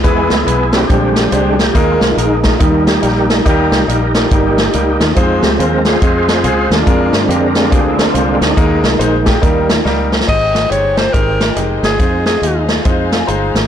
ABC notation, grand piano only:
X:1
M:4/4
L:1/16
Q:"Swing" 1/4=141
K:Ab
V:1 name="Grand piano"
[^G,=B,=E=B]2 z2 [G,B,EB]2 [G,B,E_G]2 [A,=D=Gc]2 z2 [A,DGc]2 z2 | [A,B,EB]2 z2 [A,B,EB]2 [A,B,EB]2 [G,B,EB]2 z2 [G,B,EB]2 z2 | [G,B,EG]2 z2 [G,B,EB]2 [G,B,EB]2 [G,B,EB]2 z2 [G,B,EB]2 z2 | [A,CFc]2 z2 [A,CFc]2 [A,CFA]2 [A,CFe]2 z2 [A,CFA]2 z2 |
[A,=DFB]2 z2 [A,DFG]2 [A,DFG]2 [A,DFA]2 z2 [A,DFc]2 z2 | [A,B,EB]2 z2 [A,B,Ec]2 [A,B,EG]2 [G,B,EB]2 z2 [G,B,EB]2 z2 | [A,EGc]2 z2 [A,EGc]2 z2 [A,EGc]2 z2 [A,EGB]2 z2 | [A,EFc]2 z2 [A,EFe]2 z2 [A,EFc]2 z2 [A,EFc]2 z2 |]
V:2 name="Grand piano" clef=bass
=E,6 z2 B,,6 z2 | E,6 z2 E,6 z2 | z8 E,6 z2 | z16 |
z16 | E,6 z2 E,6 z2 | A,,6 z8 z2 | z8 z2 f a b4 |]